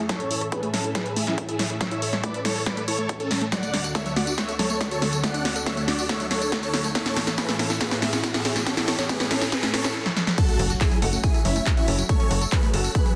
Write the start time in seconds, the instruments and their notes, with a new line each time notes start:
Already playing: analog synth pad C#4 A4, riser
0.09 analog synth pad A2 E3 E5, synth pluck A3, supersaw synth A4 C#5, kick, snare, closed hi-hat
0.20 synth pluck C#4, closed hi-hat
0.31 synth pluck E4, open hi-hat
0.41 synth pluck A4, closed hi-hat
0.52 supersaw synth G#4 B4, synth pluck C#5, kick, closed hi-hat
0.63 synth pluck A3, closed hi-hat
0.73 synth pluck C#4, supersaw synth C#4 A4, snare, open hi-hat
0.84 synth pluck E4, closed hi-hat
0.95 supersaw synth G#4 B4, synth pluck A4, kick, snare, closed hi-hat
1.06 synth pluck C#5, closed hi-hat
1.16 synth pluck A3, supersaw synth E4 G#4, open hi-hat
1.27 synth pluck C#4, snare, closed hi-hat
1.38 synth pluck E4, kick, closed hi-hat
1.49 supersaw synth E4 G#4, synth pluck A4, closed hi-hat
1.59 synth pluck C#5, snare, open hi-hat
1.70 synth pluck A3, closed hi-hat
1.81 synth pluck C#4, supersaw synth C#5 E5, kick, snare, closed hi-hat
1.91 synth pluck E4, closed hi-hat
2.02 synth pluck A4, open hi-hat
2.13 synth pluck C#5, snare, closed hi-hat
2.23 synth pluck A3, supersaw synth B4 D5, kick, closed hi-hat
2.34 synth pluck C#4, closed hi-hat
2.45 synth pluck E4, supersaw synth A4 C#5, snare, open hi-hat
2.56 synth pluck A4, open hi-hat
2.66 supersaw synth B4 D5, synth pluck C#5, kick, snare, closed hi-hat
2.77 synth pluck A3, closed hi-hat
2.88 synth pluck E4, supersaw synth A4 C#5, open hi-hat
2.98 synth pluck A3, closed hi-hat
3.09 synth pluck C#5, kick, closed hi-hat
3.20 supersaw synth C#4 A4, synth pluck A4, closed hi-hat
3.31 synth pluck C#4, snare, open hi-hat
3.41 synth pluck A3, closed hi-hat
3.52 analog synth pad D2 D3 A3 F#4 A4, synth pluck F#3, supersaw synth D5 F#5, kick, snare, closed hi-hat, tambourine
3.63 synth pluck A3, closed hi-hat, tambourine
3.74 synth pluck D4, snare, open hi-hat
3.84 synth pluck F#4, closed hi-hat, tambourine
3.95 synth pluck A4, supersaw synth C#5 E5, kick, snare, closed hi-hat, tambourine
4.06 synth pluck F#3, closed hi-hat, tambourine
4.16 synth pluck A3, supersaw synth F#4 D5, snare, open hi-hat
4.27 synth pluck D4, closed hi-hat, tambourine
4.38 synth pluck F#4, supersaw synth C#5 E5, kick, snare, closed hi-hat, tambourine
4.48 synth pluck A4, closed hi-hat, tambourine
4.59 synth pluck F#3, supersaw synth A4 C#5, snare, open hi-hat
4.70 synth pluck A3, closed hi-hat, tambourine
4.81 synth pluck D4, kick, snare, closed hi-hat, tambourine
4.91 synth pluck F#4, supersaw synth A4 C#5, closed hi-hat, tambourine
5.02 synth pluck A4, snare, open hi-hat
5.13 synth pluck F#3, closed hi-hat, tambourine
5.23 synth pluck A3, supersaw synth D5 F#5, kick, snare, closed hi-hat, tambourine
5.34 synth pluck D4, closed hi-hat, tambourine
5.45 synth pluck F#4, snare, open hi-hat
5.56 synth pluck A4, closed hi-hat, tambourine
5.66 synth pluck F#3, supersaw synth C#5 E5, kick, snare, closed hi-hat
5.77 synth pluck A3, closed hi-hat, tambourine
5.88 synth pluck D4, supersaw synth F#4 D5, snare, open hi-hat
5.99 synth pluck F#4, open hi-hat, tambourine
6.09 synth pluck A4, supersaw synth C#5 E5, kick, snare, closed hi-hat, tambourine
6.20 synth pluck F#3, closed hi-hat, tambourine
6.31 synth pluck A3, supersaw synth A4 C#5, snare, open hi-hat
6.41 synth pluck D4, closed hi-hat, tambourine
6.52 synth pluck F#4, kick, snare, closed hi-hat
6.63 synth pluck A4, supersaw synth A4 C#5, closed hi-hat, tambourine
6.74 synth pluck F#3, snare, open hi-hat
6.84 synth pluck A3, closed hi-hat, tambourine
6.95 analog synth pad A2 E3 C#4 E5, synth pluck A3, supersaw synth A4 C#5, kick, snare, closed hi-hat, tambourine
7.06 synth pluck C#4, snare, closed hi-hat, tambourine
7.16 synth pluck E4, snare, open hi-hat
7.27 synth pluck A4, snare, closed hi-hat, tambourine
7.38 supersaw synth G#4 B4, synth pluck C#5, kick, snare, closed hi-hat, tambourine
7.49 synth pluck A3, snare, closed hi-hat, tambourine
7.59 supersaw synth C#4 A4, synth pluck C#4, snare, open hi-hat
7.70 synth pluck E4, snare, closed hi-hat, tambourine
7.81 supersaw synth G#4 B4, synth pluck A4, kick, snare, closed hi-hat, tambourine
7.91 synth pluck C#5, snare, closed hi-hat, tambourine
8.02 synth pluck A3, supersaw synth E4 G#4, snare, open hi-hat
8.13 synth pluck C#4, snare, closed hi-hat, tambourine
8.24 synth pluck E4, kick, snare, closed hi-hat, tambourine
8.34 supersaw synth E4 G#4, synth pluck A4, snare, closed hi-hat, tambourine
8.45 synth pluck C#5, snare, open hi-hat
8.56 synth pluck A3, snare, closed hi-hat, tambourine
8.66 synth pluck C#4, supersaw synth A4 C#5, kick, snare, closed hi-hat, tambourine, noise sweep
8.77 synth pluck E4, snare, closed hi-hat, tambourine
8.88 synth pluck A4, snare, open hi-hat
8.99 synth pluck C#5, snare, closed hi-hat, tambourine
9.09 synth pluck A3, supersaw synth G#4 B4, kick, snare, closed hi-hat
9.20 synth pluck C#4, snare, closed hi-hat, tambourine
9.31 supersaw synth C#4 A4, synth pluck E4, snare, open hi-hat
9.41 synth pluck A4, snare, open hi-hat, tambourine
9.52 supersaw synth G#4 B4, synth pluck C#5, kick, snare, closed hi-hat, tambourine
9.63 synth pluck A3, snare, closed hi-hat, tambourine
9.73 synth pluck C#4, supersaw synth A4 C#5, snare, open hi-hat
9.84 synth pluck E4, snare, closed hi-hat, tambourine
10.06 snare
10.17 snare
10.27 snare
10.38 synth pluck F#3, analog synth pad F#3 A3 C#4, supersaw synth F#4 A4, digital synth lead A5, kick, closed hi-hat, crash, tambourine, impact
10.49 synth pluck A3, closed hi-hat, tambourine
10.59 analog synth bass F#1, synth pluck C#4, open hi-hat
10.70 synth pluck F#4, closed hi-hat, tambourine
10.81 supersaw synth E4 G#4, synth pluck A4, digital synth lead G#5, kick, clap, closed hi-hat, tambourine
10.91 synth pluck F#3, closed hi-hat, tambourine
11.02 analog synth bass F#1, synth pluck A3, supersaw synth A3 F#4, digital synth lead F#5, open hi-hat
11.13 synth pluck C#4, tambourine
11.23 supersaw synth E4 G#4, synth pluck F#4, digital synth lead G#5, kick, closed hi-hat, tambourine
11.34 synth pluck A4, closed hi-hat, tambourine
11.45 analog synth bass F#1, synth pluck F#3, supersaw synth C#4 E4, digital synth lead E5, open hi-hat
11.56 synth pluck A3, closed hi-hat, tambourine
11.66 synth pluck C#4, kick, clap, closed hi-hat, tambourine
11.77 supersaw synth C#4 E4, synth pluck F#4, digital synth lead E5, closed hi-hat, tambourine
11.88 analog synth bass F#1, synth pluck A4, open hi-hat
11.98 synth pluck F#3, tambourine
12.09 synth pluck A3, supersaw synth A4 C#5, digital synth lead C#6, kick, closed hi-hat, tambourine
12.20 synth pluck C#4, closed hi-hat, tambourine
12.31 analog synth bass F#1, synth pluck F#4, open hi-hat
12.41 synth pluck A4, closed hi-hat, tambourine
12.52 synth pluck F#3, supersaw synth G#4 B4, digital synth lead B5, kick, clap, closed hi-hat
12.63 synth pluck A3, closed hi-hat, tambourine
12.73 analog synth bass F#1, synth pluck C#4, supersaw synth F#4 A4, digital synth lead A5, open hi-hat
12.84 synth pluck F#4, open hi-hat, tambourine
12.95 supersaw synth G#4 B4, synth pluck A4, digital synth lead B5, kick, closed hi-hat
13.06 synth pluck F#3, closed hi-hat, tambourine